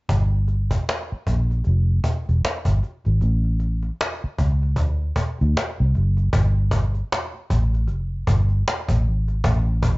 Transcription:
0.09 G1, cajon bass
0.33 cajon slap
0.48 cajon slap
0.71 cajon bass
0.89 cajon slap
1.10 muted fingered electric bass stroke, cajon slap
1.27 A#1, cajon bass
1.50 cajon slap
1.64 F1, cajon slap
1.90 cajon slap
2.04 muted fingered electric bass stroke, cajon bass
2.26 cajon slap
2.29 E1, cajon slap
2.45 muted fingered electric bass stroke, cajon slap
2.65 G1, cajon bass
2.83 cajon slap
3.05 G#1, cajon slap
3.21 A1, cajon slap
3.44 cajon slap
3.60 cajon slap
3.82 cajon slap
4.01 cajon slap
4.22 muted fingered electric bass stroke, cajon slap
4.39 C#2, cajon bass
4.62 cajon slap
4.76 D2, cajon bass
5.02 cajon slap
5.16 muted fingered electric bass stroke, cajon bass
5.38 cajon slap
5.41 D2, cajon slap
5.57 cajon slap
5.80 C2
5.95 F#1, cajon slap
6.17 cajon slap
6.33 G1, cajon bass
6.57 cajon slap
6.71 cajon bass
6.94 cajon slap
7.12 cajon slap
7.34 cajon slap
7.50 A1, cajon bass
7.73 cajon slap
7.87 F1, cajon slap
8.27 G1, cajon bass
8.49 cajon slap
8.68 cajon slap
8.88 A1, cajon bass
9.08 G#1
9.28 cajon slap
9.44 A1, cajon bass
9.68 cajon slap
9.83 cajon bass

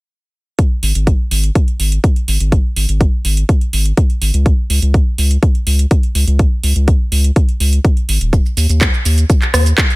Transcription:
0.59 kick, closed hi-hat
0.83 G#1, open hi-hat
0.95 G#1, closed hi-hat
1.07 kick, closed hi-hat
1.31 G#1, open hi-hat
1.44 closed hi-hat
1.55 kick, closed hi-hat
1.68 closed hi-hat
1.80 G#1, open hi-hat
1.92 closed hi-hat
2.04 kick, closed hi-hat
2.16 closed hi-hat
2.28 G#1, open hi-hat
2.40 G#1, closed hi-hat
2.52 kick, closed hi-hat
2.76 G#1, open hi-hat
2.89 G#1, closed hi-hat
3.01 kick, closed hi-hat
3.25 G#1, open hi-hat
3.37 closed hi-hat
3.49 kick, closed hi-hat
3.61 closed hi-hat
3.73 G#1, open hi-hat
3.86 closed hi-hat
3.97 kick, closed hi-hat
4.10 closed hi-hat
4.22 G#1, open hi-hat
4.34 C#2, closed hi-hat
4.46 kick, closed hi-hat
4.70 C#2, open hi-hat
4.82 C#2, closed hi-hat
4.94 kick, closed hi-hat
5.18 C#2, open hi-hat
5.31 closed hi-hat
5.43 kick, closed hi-hat
5.55 closed hi-hat
5.67 C#2, open hi-hat
5.79 closed hi-hat
5.91 kick, closed hi-hat
6.03 closed hi-hat
6.15 C#2, open hi-hat
6.27 C#2, closed hi-hat
6.39 kick, closed hi-hat
6.63 C#2, open hi-hat
6.76 C#2, closed hi-hat
6.88 kick, closed hi-hat
7.12 C#2, open hi-hat
7.24 closed hi-hat
7.36 kick, closed hi-hat
7.49 closed hi-hat
7.60 C#2, open hi-hat
7.73 closed hi-hat
7.85 kick, closed hi-hat
7.97 closed hi-hat
8.09 G#1, open hi-hat
8.21 D#1, closed hi-hat
8.33 kick, closed hi-hat, shaker
8.46 shaker
8.57 D#2, open hi-hat, shaker
8.69 D#2, closed hi-hat, shaker
8.81 kick, clap, closed hi-hat, shaker
8.94 shaker
9.05 D#2, open hi-hat, shaker
9.18 closed hi-hat, shaker
9.30 kick, closed hi-hat, shaker
9.42 clap, closed hi-hat, shaker
9.54 D#2, cross-stick, open hi-hat, shaker
9.66 closed hi-hat, shaker
9.78 kick, clap, closed hi-hat, shaker
9.90 closed hi-hat, shaker

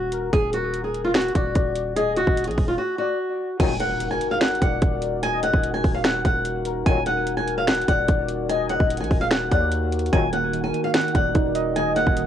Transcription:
Already playing: D#1 F#4
0.12 A#4, closed hi-hat
0.33 D#1 G#4, kick, closed hi-hat
0.53 F#4 A#4, closed hi-hat
0.74 closed hi-hat
0.84 G#4
0.94 closed hi-hat
1.05 F4
1.14 F#4, finger snap, snare, closed hi-hat
1.22 closed hi-hat
1.28 closed hi-hat
1.35 D#1 F#4 D5, kick, closed hi-hat
1.55 D#1, kick, closed hi-hat
1.75 closed hi-hat
1.96 G#4 D#5, closed hi-hat
2.16 F#4, closed hi-hat
2.27 D#1, kick
2.37 closed hi-hat
2.44 A#1 G#4, closed hi-hat
2.51 closed hi-hat
2.58 D#1, kick, open hi-hat
2.68 F4
2.78 F#4
2.98 F#4 D5
3.60 D#1 A#2 D#3 F#3 D#4 F#4 A#4 G#5, kick, closed hi-hat, crash, impact
3.80 A#4 F#5, closed hi-hat
4.00 closed hi-hat
4.11 G#5
4.21 closed hi-hat
4.31 F5
4.41 F#5, finger snap, snare, closed hi-hat
4.48 closed hi-hat
4.55 closed hi-hat
4.62 D#1 D5 F#5, kick, closed hi-hat
4.82 D#1, kick, closed hi-hat
5.02 closed hi-hat
5.23 D#5 G#5, closed hi-hat
5.43 F#5, closed hi-hat
5.54 D#1, kick
5.64 closed hi-hat
5.74 G#5
5.84 D#1, kick, open hi-hat
5.94 F5
6.04 F#5, finger snap, snare, closed hi-hat
6.25 D#1 F#5, kick, closed hi-hat
6.45 closed hi-hat
6.65 A#4, closed hi-hat
6.86 D#1 A#2 D#3 F#3 F#4 G#5, kick, closed hi-hat
7.06 A#4 F#5, closed hi-hat
7.27 closed hi-hat
7.37 G#5
7.48 closed hi-hat
7.58 F5
7.67 F#5, finger snap, snare, closed hi-hat
7.75 closed hi-hat
7.81 closed hi-hat
7.88 D#1 D5 F#5, kick, closed hi-hat
8.08 D#1, kick, closed hi-hat
8.29 closed hi-hat
8.49 D#5 G#5, closed hi-hat
8.69 F#5, closed hi-hat
8.80 D#1, kick
8.90 closed hi-hat
8.97 A#1 G#5, closed hi-hat
9.04 closed hi-hat
9.11 D#1, kick, open hi-hat
9.21 F5
9.31 F#5, finger snap, snare, closed hi-hat
9.51 D#2 D5 F#5, kick, closed hi-hat
9.72 closed hi-hat
9.92 closed hi-hat
9.99 closed hi-hat
10.06 closed hi-hat
10.13 D#1 A#2 D#3 F#3 D#4 G#5, kick, closed hi-hat
10.33 A#3 A#4 F#5, closed hi-hat
10.53 D#3, closed hi-hat
10.64 G#5
10.73 D#3, closed hi-hat
10.84 F5
10.94 D#3 F#5, finger snap, snare, closed hi-hat
11.01 closed hi-hat
11.08 closed hi-hat
11.15 D#1 D5 F#5, kick, closed hi-hat
11.35 D#1 D#4, kick, closed hi-hat
11.55 D#5, closed hi-hat
11.76 D#3 D#5 G#5, closed hi-hat
11.96 A#3 F#5, closed hi-hat
12.07 D#1, kick
12.17 D#3, closed hi-hat

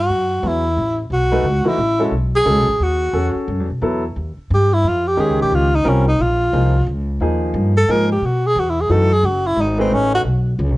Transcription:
0.00 F#4
0.09 F#2
0.43 E2 F#3 B3 E4 G#4
0.47 E4
0.77 A1
1.10 B1 F#4
1.32 A3 D#4 G#4 B4
1.43 C#2
1.64 E3 A3 D#4 E4 F#4, muted upright bass stroke
1.78 A1
2.00 G#3 C#4 F#4 A4
2.12 B1
2.36 G#4
2.46 C#2 G#3 C#4 F#4 A4
2.57 B1
2.69 A1
2.80 D#2 F#4
3.13 E2 C#4 F#4 G#4 A4
3.35 muted upright bass stroke
3.48 F#2
3.59 E2
3.70 B1
3.81 E2 F#3 B3 E4 A4
4.16 D#2
4.37 muted upright bass stroke
4.50 G2 G4
4.73 E4
4.84 F2
4.88 F4
5.07 G4
5.17 D#2 D#3 G#3 C#4 G4 G#4
5.29 C#2
5.41 A#1 G4
5.52 C#2 F4
5.76 D#4
5.84 C2 G3 C4 F4 A#4
5.89 C#4
6.08 D#4
6.19 A#1 F4
6.53 C2 F3 A#3 D#4 G#4
6.86 C#2
7.20 D#2 F3 A#3 D#4 G#4
7.54 G2
7.77 A4
7.88 G#2 F3 A#3 D#4 G#4 A#4
8.12 G4
8.22 B2 F#4
8.46 G#4
8.56 E2 F#4
8.70 E4
8.81 G#4
8.89 F#2 E3 A3 D#4 F#4 A4
9.13 G#4
9.23 F#1 F#4
9.47 E4
9.56 G#1
9.61 D#4
9.79 A3 C4 D#4 G#4 B4
9.90 A1 C#4
10.15 F#4
10.25 B1
10.59 C#2
10.70 B1

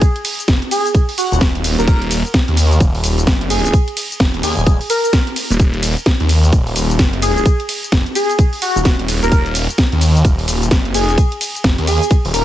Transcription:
0.01 kick, closed hi-hat, ride, shaker
0.16 closed hi-hat
0.25 open hi-hat, ride, shaker
0.39 closed hi-hat, shaker
0.48 F1, kick, snare, closed hi-hat, ride, shaker
0.62 closed hi-hat
0.71 G#4, open hi-hat, ride, shaker
0.86 closed hi-hat, shaker
0.95 kick, closed hi-hat, ride, shaker
1.09 open hi-hat
1.18 F#4, open hi-hat, ride, shaker
1.32 D#1, closed hi-hat, shaker
1.41 kick, snare, closed hi-hat, ride, shaker
1.55 D#1, closed hi-hat
1.64 open hi-hat, ride, shaker
1.79 D#1 A#4, closed hi-hat, shaker
1.88 D#1 A#4, kick, closed hi-hat, ride, shaker
2.02 closed hi-hat
2.11 open hi-hat, ride, shaker
2.25 closed hi-hat, shaker
2.34 kick, snare, closed hi-hat, ride, shaker
2.48 D#2, closed hi-hat
2.57 open hi-hat, ride, shaker
2.71 closed hi-hat, shaker
2.80 D#1, kick, closed hi-hat, ride, shaker
2.95 open hi-hat
3.04 D#1, open hi-hat, ride, shaker
3.18 closed hi-hat, shaker
3.27 F#1, kick, snare, closed hi-hat, ride, shaker
3.41 closed hi-hat
3.50 G#4, open hi-hat, ride, shaker
3.64 G#4, closed hi-hat, shaker
3.73 kick, closed hi-hat, ride, shaker
3.88 closed hi-hat
3.97 open hi-hat, ride, shaker
4.11 closed hi-hat, shaker
4.20 F1, kick, snare, closed hi-hat, ride, shaker
4.34 D#1, closed hi-hat
4.43 D#2 G#4, open hi-hat, ride, shaker
4.57 D#1, closed hi-hat, shaker
4.67 kick, closed hi-hat, ride, shaker
4.81 open hi-hat
4.90 A#4, open hi-hat, ride, shaker
5.04 A#4, closed hi-hat, shaker
5.13 kick, snare, closed hi-hat, ride, shaker
5.27 closed hi-hat
5.36 open hi-hat, ride, shaker
5.50 D#1, closed hi-hat, shaker
5.60 D#1, kick, closed hi-hat, ride, shaker
5.74 closed hi-hat
5.83 open hi-hat, ride, shaker
5.97 closed hi-hat, shaker
6.06 kick, snare, closed hi-hat, ride, shaker
6.20 D#2, closed hi-hat
6.29 open hi-hat, ride, shaker
6.43 closed hi-hat, shaker
6.53 D#1, kick, closed hi-hat, ride, shaker
6.67 open hi-hat
6.76 D#1, open hi-hat, ride, shaker
6.90 closed hi-hat, shaker
6.99 F#1, kick, snare, closed hi-hat, ride, shaker
7.13 closed hi-hat
7.22 G#4, open hi-hat, ride, shaker
7.37 G#4, closed hi-hat, shaker
7.46 kick, closed hi-hat, ride, shaker
7.60 closed hi-hat
7.69 open hi-hat, ride, shaker
7.83 closed hi-hat, shaker
7.92 F1, kick, snare, closed hi-hat, ride, shaker
8.06 closed hi-hat
8.15 G#4, open hi-hat, ride, shaker
8.30 closed hi-hat, shaker
8.39 kick, closed hi-hat, ride, shaker
8.53 open hi-hat
8.62 F#4, open hi-hat, ride, shaker
8.76 D#1, closed hi-hat, shaker
8.85 kick, snare, closed hi-hat, ride, shaker
8.99 D#1, closed hi-hat
9.08 open hi-hat, ride, shaker
9.23 D#1 A#4, closed hi-hat, shaker
9.32 D#1 A#4, kick, closed hi-hat, ride, shaker
9.46 closed hi-hat
9.55 open hi-hat, ride, shaker
9.69 closed hi-hat, shaker
9.78 kick, snare, closed hi-hat, ride, shaker
9.92 D#2, closed hi-hat
10.01 open hi-hat, ride, shaker
10.16 closed hi-hat, shaker
10.25 D#1, kick, closed hi-hat, ride, shaker
10.39 open hi-hat
10.48 D#1, open hi-hat, ride, shaker
10.62 closed hi-hat, shaker
10.71 F#1, kick, snare, closed hi-hat, ride, shaker
10.85 closed hi-hat
10.94 G#4, open hi-hat, ride, shaker
11.09 G#4, closed hi-hat, shaker
11.18 kick, closed hi-hat, ride, shaker
11.32 closed hi-hat
11.41 open hi-hat, ride, shaker
11.55 closed hi-hat, shaker
11.64 F1, kick, snare, closed hi-hat, ride, shaker
11.78 D#2, closed hi-hat
11.87 G#4, open hi-hat, ride, shaker
12.02 closed hi-hat, shaker
12.11 kick, closed hi-hat, ride, shaker
12.25 D#1, open hi-hat
12.34 A#4, open hi-hat, ride, shaker

